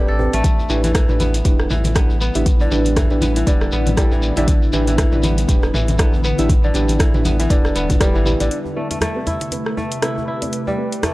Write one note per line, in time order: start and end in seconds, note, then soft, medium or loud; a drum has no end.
0.00 0.49 G3 medium
0.00 0.33 A3 medium
0.00 0.16 C4 medium
0.00 1.37 D4 medium
0.00 0.75 E4 medium
0.00 0.16 G4 medium
0.00 1.35 G4 medium
0.00 0.16 A4 medium
0.00 0.16 B4 medium
0.08 0.28 A1 loud
0.08 1.40 A4 medium
0.19 0.42 C4 medium
0.19 0.42 G4 medium
0.19 0.42 A4 medium
0.19 0.42 B4 medium
0.19 djembe tone medium
0.19 low conga medium
0.33 0.42 A1 medium
0.33 2.33 A3 loud
0.33 closed hi-hat soft
0.33 muted conga soft
0.44 8.47 D3 medium
0.44 8.47 G3 medium
0.44 8.47 B3 medium
0.44 8.47 E4 medium
0.44 kick loud
0.44 closed hi-hat medium
0.44 high conga medium
0.44 shekere medium
0.59 djembe tone medium
0.59 shekere soft
0.70 1.05 A1 medium
0.70 0.83 E3 medium
0.70 1.06 D4 medium
0.70 1.06 E4 medium
0.70 1.06 G4 medium
0.70 1.06 B4 medium
0.70 muted conga soft
0.70 shekere medium
0.84 0.94 E3 medium
0.84 closed hi-hat soft
0.84 high conga medium
0.84 djembe tone medium
0.84 shekere soft
0.95 1.69 E3 medium
0.95 kick loud
0.95 cross-stick loud
0.95 closed hi-hat medium
0.95 djembe bass medium
0.95 shekere medium
1.09 1.42 A1 medium
1.09 1.31 D4 medium
1.09 1.31 E4 medium
1.09 1.31 G4 medium
1.09 1.31 B4 medium
1.09 mid tom medium
1.09 muted conga soft
1.09 shekere soft
1.20 1.95 B3 medium
1.20 closed hi-hat soft
1.20 djembe tone medium
1.20 high conga medium
1.20 djembe bass medium
1.20 shekere medium
1.34 closed hi-hat soft
1.34 djembe slap medium
1.34 shekere soft
1.45 1.67 E1 medium
1.45 1.68 D4 medium
1.45 1.68 E4 medium
1.45 1.68 G4 medium
1.45 1.68 B4 medium
1.45 kick loud
1.45 closed hi-hat soft
1.45 muted conga soft
1.45 high conga medium
1.45 djembe tone medium
1.45 low conga medium
1.45 shekere soft
1.59 cross-stick medium
1.59 shekere soft
1.70 2.06 A1 medium
1.70 2.64 E3 medium
1.70 mid tom medium
1.70 djembe tone medium
1.70 shekere medium
1.84 closed hi-hat soft
1.84 mid tom medium
1.84 high conga medium
1.84 shekere soft
1.95 2.21 B3 medium
1.95 2.11 D4 medium
1.95 2.11 E4 medium
1.95 2.11 G4 medium
1.95 2.11 A4 medium
1.95 kick loud
1.95 cross-stick loud
1.95 closed hi-hat soft
1.95 shekere soft
2.10 2.30 A1 medium
2.10 djembe tone medium
2.10 shekere soft
2.21 3.22 B3 medium
2.21 shekere medium
2.34 2.68 A1 medium
2.34 2.47 D4 loud
2.34 2.47 E4 medium
2.34 2.47 G4 medium
2.34 2.47 E5 loud
2.34 closed hi-hat soft
2.34 muted conga soft
2.34 djembe tone medium
2.34 shekere soft
2.46 kick loud
2.46 closed hi-hat medium
2.46 high conga medium
2.46 low conga medium
2.46 shekere soft
2.60 3.46 D3 medium
2.60 djembe tone medium
2.60 shekere soft
2.71 3.07 A1 loud
2.71 3.08 D4 medium
2.71 3.08 E4 medium
2.71 3.08 G4 medium
2.71 3.08 B4 medium
2.71 muted conga soft
2.71 shekere medium
2.85 closed hi-hat soft
2.85 high conga medium
2.85 shekere soft
2.96 3.35 E3 medium
2.96 kick loud
2.96 cross-stick medium
2.96 closed hi-hat medium
2.96 djembe tone medium
2.96 djembe bass medium
2.96 shekere soft
3.10 3.44 A1 loud
3.10 3.33 D4 medium
3.10 3.33 E4 medium
3.10 3.33 G4 medium
3.10 3.33 B4 medium
3.10 muted conga soft
3.10 shekere soft
3.21 3.72 B3 medium
3.21 closed hi-hat soft
3.21 high conga medium
3.21 djembe tone medium
3.21 djembe bass medium
3.21 shekere medium
3.36 3.52 E3 medium
3.36 closed hi-hat soft
3.36 djembe slap medium
3.36 shekere soft
3.47 3.68 E1 medium
3.47 4.36 D3 medium
3.47 3.69 D4 medium
3.47 3.69 E4 medium
3.47 3.69 G4 medium
3.47 3.69 B4 medium
3.47 kick loud
3.47 closed hi-hat medium
3.47 muted conga soft
3.47 djembe tone medium
3.47 shekere medium
3.61 cross-stick medium
3.61 shekere soft
3.72 4.08 A1 medium
3.72 5.23 B3 medium
3.72 shekere medium
3.86 closed hi-hat soft
3.86 mid tom medium
3.86 djembe tone medium
3.86 high conga medium
3.86 shekere soft
3.97 4.40 G3 medium
3.97 4.13 D4 medium
3.97 4.13 E4 medium
3.97 4.13 G4 medium
3.97 4.13 A4 medium
3.97 kick loud
3.97 cross-stick medium
3.97 closed hi-hat medium
3.97 shekere soft
4.12 4.32 A1 medium
4.12 4.40 E3 medium
4.12 djembe tone medium
4.12 shekere soft
4.22 shekere medium
4.37 4.70 A1 medium
4.37 6.63 D3 medium
4.37 4.49 D4 medium
4.37 4.49 E4 medium
4.37 4.49 G4 medium
4.37 4.49 E5 loud
4.37 closed hi-hat soft
4.37 muted conga medium
4.37 djembe tone medium
4.37 shekere soft
4.48 kick loud
4.48 closed hi-hat medium
4.48 high conga medium
4.48 shekere soft
4.62 shekere soft
4.73 5.09 A1 loud
4.73 4.87 E3 medium
4.73 5.09 D4 medium
4.73 5.09 E4 medium
4.73 5.09 G4 medium
4.73 5.09 B4 medium
4.73 muted conga medium
4.73 djembe tone medium
4.73 shekere medium
4.87 4.97 E3 medium
4.87 closed hi-hat soft
4.87 high conga medium
4.87 shekere soft
4.98 5.73 E3 medium
4.98 kick loud
4.98 cross-stick loud
4.98 closed hi-hat medium
4.98 djembe tone medium
4.98 djembe bass loud
4.98 shekere soft
5.12 5.46 A1 medium
5.12 5.34 D4 medium
5.12 5.34 E4 medium
5.12 5.34 G4 medium
5.12 5.34 B4 medium
5.12 mid tom medium
5.12 muted conga soft
5.12 shekere soft
5.23 5.99 B3 medium
5.23 closed hi-hat soft
5.23 djembe tone medium
5.23 high conga medium
5.23 djembe bass medium
5.23 shekere medium
5.38 closed hi-hat soft
5.38 djembe slap medium
5.38 shekere soft
5.49 5.70 E1 medium
5.49 5.71 D4 medium
5.49 5.71 E4 medium
5.49 5.71 G4 medium
5.49 5.71 B4 medium
5.49 kick loud
5.49 closed hi-hat medium
5.49 muted conga soft
5.49 high conga medium
5.49 low conga medium
5.49 shekere medium
5.62 cross-stick medium
5.62 djembe tone medium
5.62 shekere soft
5.74 6.09 A1 medium
5.74 6.67 E3 medium
5.74 mid tom loud
5.74 shekere medium
5.88 closed hi-hat soft
5.88 mid tom medium
5.88 high conga medium
5.88 djembe tone medium
5.88 shekere soft
5.98 6.24 B3 medium
5.98 6.14 D4 medium
5.98 6.14 E4 medium
5.98 6.15 G4 medium
5.98 6.14 A4 medium
5.98 kick loud
5.98 cross-stick medium
5.98 closed hi-hat medium
5.98 muted conga soft
5.98 shekere soft
6.13 6.34 A1 medium
6.13 djembe tone medium
6.13 shekere soft
6.24 7.25 B3 medium
6.24 shekere medium
6.38 6.72 A1 medium
6.38 6.51 D4 medium
6.38 6.51 E4 medium
6.38 6.51 G4 medium
6.38 6.51 E5 loud
6.38 closed hi-hat soft
6.38 muted conga medium
6.38 shekere soft
6.49 kick loud
6.49 closed hi-hat medium
6.49 high conga medium
6.49 djembe tone medium
6.49 low conga medium
6.49 shekere soft
6.64 7.49 D3 medium
6.64 shekere soft
6.74 7.10 A1 loud
6.74 7.11 D4 medium
6.74 7.11 E4 medium
6.74 7.11 G4 medium
6.74 7.11 B4 medium
6.74 closed hi-hat soft
6.74 muted conga medium
6.74 djembe tone medium
6.74 shekere medium
6.88 closed hi-hat soft
6.88 high conga medium
6.88 shekere soft
6.99 7.38 E3 medium
6.99 kick loud
6.99 cross-stick medium
6.99 closed hi-hat medium
6.99 djembe tone medium
6.99 djembe bass medium
6.99 shekere soft
7.14 7.47 A1 loud
7.14 7.36 D4 medium
7.14 7.36 E4 medium
7.14 7.36 G4 medium
7.14 7.36 B4 medium
7.14 mid tom medium
7.14 muted conga soft
7.14 shekere soft
7.25 7.75 B3 medium
7.25 closed hi-hat soft
7.25 high conga medium
7.25 djembe bass medium
7.25 shekere medium
7.39 7.55 E3 medium
7.39 closed hi-hat soft
7.39 djembe slap medium
7.39 djembe tone medium
7.39 shekere soft
7.50 7.72 E1 medium
7.50 8.39 D3 loud
7.50 7.73 D4 medium
7.50 7.73 E4 medium
7.50 7.73 G4 medium
7.50 7.73 B4 medium
7.50 kick loud
7.50 closed hi-hat medium
7.50 muted conga medium
7.50 shekere soft
7.64 cross-stick medium
7.64 djembe tone medium
7.64 shekere soft
7.76 8.17 E1 medium
7.76 9.62 B3 medium
7.76 closed hi-hat soft
7.76 shekere medium
7.90 kick medium
7.90 closed hi-hat soft
7.90 mid tom medium
7.90 high conga medium
7.90 djembe tone medium
7.90 shekere soft
8.01 8.44 G3 medium
8.01 8.23 D4 medium
8.01 8.23 E4 medium
8.01 8.23 G4 medium
8.01 8.23 B4 medium
8.01 kick loud
8.01 cross-stick loud
8.01 closed hi-hat medium
8.01 shekere soft
8.15 8.35 A1 loud
8.15 8.44 E3 medium
8.15 shekere soft
8.26 8.48 D4 medium
8.26 8.48 E4 medium
8.26 8.48 G4 medium
8.26 8.48 B4 medium
8.26 djembe tone medium
8.26 low conga medium
8.26 shekere medium
8.40 8.49 A1 medium
8.40 8.56 D3 medium
8.40 closed hi-hat soft
8.40 muted conga medium
8.40 shekere soft
8.51 11.14 C3 medium
8.51 11.14 A3 medium
8.51 11.14 G4 medium
8.51 11.14 B4 medium
8.51 closed hi-hat soft
8.65 djembe tone medium
8.76 8.90 A3 medium
8.76 9.12 C4 medium
8.76 9.12 G4 medium
8.76 9.12 A4 medium
8.76 9.12 B4 medium
8.91 9.01 A3 medium
8.91 closed hi-hat soft
8.91 djembe tone medium
9.01 9.77 A3 medium
9.01 cross-stick medium
9.01 closed hi-hat medium
9.01 djembe bass medium
9.16 9.38 C4 medium
9.16 9.38 G4 medium
9.16 9.38 A4 medium
9.16 9.38 B4 medium
9.27 10.02 E4 medium
9.27 closed hi-hat soft
9.27 djembe tone medium
9.27 djembe bass medium
9.41 closed hi-hat soft
9.41 djembe slap medium
9.51 9.74 C4 medium
9.51 9.74 G4 medium
9.51 9.74 A4 medium
9.51 9.74 B4 medium
9.51 closed hi-hat medium
9.51 djembe tone medium
9.66 cross-stick medium
9.77 11.03 A3 medium
9.77 djembe tone medium
9.92 closed hi-hat soft
10.02 10.18 C4 medium
10.02 10.27 E4 medium
10.02 10.18 G4 medium
10.02 10.18 A4 medium
10.02 10.18 B4 medium
10.02 cross-stick medium
10.02 closed hi-hat soft
10.18 djembe tone medium
10.28 11.14 E4 medium
10.42 10.54 C4 medium
10.42 10.54 G4 medium
10.42 10.54 A4 medium
10.42 10.54 D5 medium
10.42 closed hi-hat soft
10.42 djembe tone medium
10.53 closed hi-hat soft
10.67 11.14 G3 medium
10.67 djembe tone medium
10.78 11.14 C4 medium
10.78 11.14 G4 medium
10.78 11.14 A4 medium
10.78 11.14 B4 medium
10.92 closed hi-hat soft
11.03 11.14 A3 medium
11.03 cross-stick loud
11.03 closed hi-hat medium
11.03 djembe tone medium
11.03 djembe bass medium